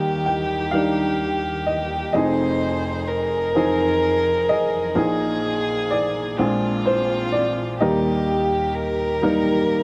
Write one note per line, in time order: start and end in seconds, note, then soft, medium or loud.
0.00 2.11 D#2 medium
0.00 2.11 D#3 medium
0.00 0.50 G3 medium
0.00 0.50 A#3 medium
0.00 0.51 D#4 medium
0.00 0.70 G4 medium
0.00 2.11 G4 medium
0.00 2.16 G4 medium
0.00 0.51 A#4 medium
0.00 0.22 D#5 medium
0.26 0.70 G5 medium
0.71 1.91 G3 medium
0.71 1.91 D4 medium
0.71 1.92 D#4 medium
0.71 1.92 A#4 medium
0.71 1.69 F5 medium
1.66 2.11 D#5 medium
2.13 4.93 F1 medium
2.13 4.93 F2 medium
2.13 4.95 F2 medium
2.13 3.32 F3 medium
2.13 6.36 F3 medium
2.13 3.32 C4 medium
2.13 3.33 D#4 medium
2.13 6.35 D#4 medium
2.13 3.33 G#4 medium
2.13 6.35 G#4 medium
2.13 3.09 C5 medium
2.13 3.98 D#5 medium
3.08 4.96 A#4 loud
3.55 4.73 F3 medium
3.55 4.74 C4 medium
3.55 4.74 D#4 medium
3.55 4.49 G#4 medium
4.49 4.95 G#4 medium
4.49 5.95 D#5 loud
4.95 6.34 A#1 medium
4.95 6.34 A#2 medium
4.95 9.83 A#2 medium
4.95 6.15 F3 medium
4.95 6.15 A#3 medium
4.95 6.15 D#4 medium
4.95 6.40 G#4 loud
4.95 5.91 G#4 medium
5.91 6.39 G#4 medium
5.91 6.82 D5 medium
6.38 7.77 A#1 medium
6.38 7.77 A#2 medium
6.38 7.57 G#3 medium
6.38 7.79 C4 medium
6.38 7.58 C4 medium
6.38 7.79 D4 medium
6.38 7.58 D4 medium
6.38 7.79 F4 medium
6.38 7.58 G#4 medium
6.86 7.30 C5 medium
7.32 7.82 D5 medium
7.79 9.83 D#2 medium
7.79 9.83 D#3 medium
7.79 9.00 G3 medium
7.79 9.00 A#3 medium
7.79 9.00 D#4 medium
7.79 8.76 G4 medium
7.79 9.83 G4 medium
7.79 9.67 G4 medium
7.79 9.01 A#4 medium
7.79 9.67 D#5 medium
8.74 9.83 A#4 loud
9.22 9.83 G3 medium
9.22 9.83 A#3 medium
9.22 9.83 D#4 medium
9.22 9.83 A#4 medium